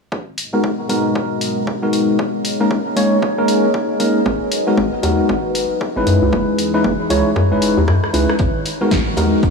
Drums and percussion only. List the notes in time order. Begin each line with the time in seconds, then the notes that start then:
0.12 kick
0.38 open hi-hat
0.64 kick
0.89 open hi-hat
1.15 kick
1.41 open hi-hat
1.67 kick
1.93 open hi-hat
2.19 kick
2.45 open hi-hat
2.71 kick
2.97 open hi-hat
3.22 kick
3.48 open hi-hat
3.74 kick
4.00 open hi-hat
4.26 kick
4.52 open hi-hat
4.78 kick
5.03 open hi-hat
5.29 kick
5.55 open hi-hat
5.81 kick
6.07 open hi-hat
6.33 kick
6.59 open hi-hat
6.84 kick
7.10 open hi-hat
7.36 kick
7.62 open hi-hat
7.88 kick, cross-stick
8.04 cross-stick
8.14 open hi-hat
8.29 cross-stick
8.39 kick, closed hi-hat
8.65 closed hi-hat, open hi-hat
8.91 kick, snare, closed hi-hat
9.17 closed hi-hat, open hi-hat
9.43 kick, closed hi-hat